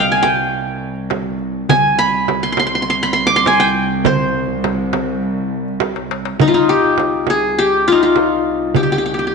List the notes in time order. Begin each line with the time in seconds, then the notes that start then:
Already playing: C2 D#5 F5
0.00 G5
0.12 G#5
0.23 G5, frame drum
0.68 darbuka ka
0.96 darbuka ka
1.10 darbuka tek, frame drum
1.39 darbuka ka
1.69 C2 G#5, darbuka dum, frame drum
1.99 B5, darbuka ka
2.28 darbuka tek, frame drum
2.43 C6
2.52 C6
2.57 C6, darbuka tek, frame drum
2.67 C6
2.75 C6
2.82 C6
2.90 C6
3.02 B5, darbuka ka
3.13 C6
3.27 D6
3.31 darbuka ka
3.36 C6
3.46 G#5, darbuka tek, frame drum
3.60 G5
3.75 darbuka ka
3.90 darbuka ka
4.04 C5, darbuka dum, frame drum
4.35 darbuka ka
4.50 darbuka ka
4.64 darbuka tek, frame drum
4.93 darbuka tek, frame drum
5.23 darbuka ka
5.38 darbuka ka
5.68 darbuka ka
5.80 darbuka tek, frame drum
5.96 darbuka ka
6.11 darbuka tek
6.25 darbuka ka
6.40 C2 D#4, frame drum, darbuka dum
6.48 F4
6.54 D#4
6.69 G4
6.98 darbuka tek, frame drum
7.27 G#4, frame drum
7.59 G4
7.74 darbuka ka
7.88 F4
7.92 D#4
8.03 F4
8.16 darbuka tek, frame drum
8.47 darbuka ka
8.74 G4, frame drum, darbuka dum
8.83 G4
8.92 G4
8.98 G4
9.06 G4
9.14 G4
9.19 G4
9.27 G4